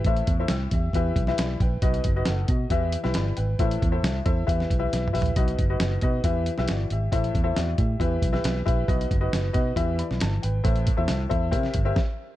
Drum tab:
HH |x--x--x-----x-----x-----x-----x-----x-----x-----|x--x--x-----x-----x-----x-----x-----x-----x-----|x--x--x-----x-----x-----x-----x-----x-----o--x--|x--x--x-----x-----x-----x-----x-----x-----x-----|
SD |------------o--------------------o--o-----------|------------o--------------------o--o-----------|------------o--------------o--------o-----------|------------o--------------------o--o-----------|
T2 |------------------------------------------------|------------------------------------------------|----------------------------------------o-------|------------------------------------------------|
FT |------------------------------------------------|------------------------------------------------|--------------------------------------------o---|------------------------------------------------|
BD |o-----o-----------o-----o-----o-----------o-----|o-----o-----------o-----o-----------------------|o-----o-----------o-----o-----o-----------------|o-----o-----------o-----o-----------------------|

HH |x--x--x-----x-----x-----x-----x-----x-----x-----|x--x--x-----x-----x-----x-----x-----x-----x-----|x--x--x-----x-----x-----x-----x-----------------|
SD |------------o--------------------o--o-----------|------------o--------------------o--o-----------|------------o--------------o--------o-----------|
T2 |------------------------------------------------|------------------------------------------------|------------------------------------------------|
FT |------------------------------------------------|------------------------------------------------|------------------------------------------------|
BD |o-----o-----------o-----o-----o-----------o-----|o-----o-----------o-----o-----------------------|o-----o-----------o-----o-----o-----o-----------|